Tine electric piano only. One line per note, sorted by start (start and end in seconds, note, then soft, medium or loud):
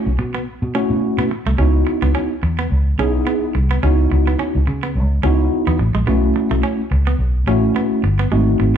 0.75 1.29 A3 medium
0.75 1.29 C#4 medium
0.75 1.29 E4 medium
0.75 1.29 F#4 loud
1.58 2.32 B3 medium
1.58 2.32 D#4 medium
1.58 2.32 E4 medium
1.58 2.32 F#4 medium
2.99 3.53 B3 medium
2.99 3.53 D#4 medium
2.99 3.53 E4 medium
2.99 3.53 G#4 loud
3.83 4.56 B3 medium
3.83 4.57 D#4 medium
3.83 4.57 E4 medium
3.83 4.57 F#4 medium
5.23 5.77 B3 medium
5.23 5.77 D#4 medium
5.23 5.78 E4 medium
5.23 5.78 F#4 loud
6.07 6.80 A3 medium
6.07 6.81 C#4 medium
6.07 6.81 E4 medium
6.07 6.81 F#4 medium
7.47 8.02 A3 medium
7.47 8.02 C#4 medium
7.47 8.02 E4 medium
7.47 8.02 F#4 loud
8.31 8.77 A3 medium
8.31 8.77 C4 medium
8.31 8.77 D#4 medium
8.31 8.77 F#4 medium